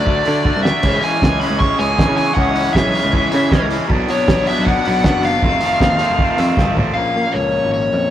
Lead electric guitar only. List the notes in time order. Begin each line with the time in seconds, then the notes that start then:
Already playing: D5
0.63 E5
1.04 G#5
1.40 B5
1.60 C#6
1.79 G#5
2.17 G#5
2.34 F#5
2.73 E5
4.10 C#5
4.47 E5
4.65 F#5
5.25 F5
6.94 F5
7.33 C#5
7.74 C#5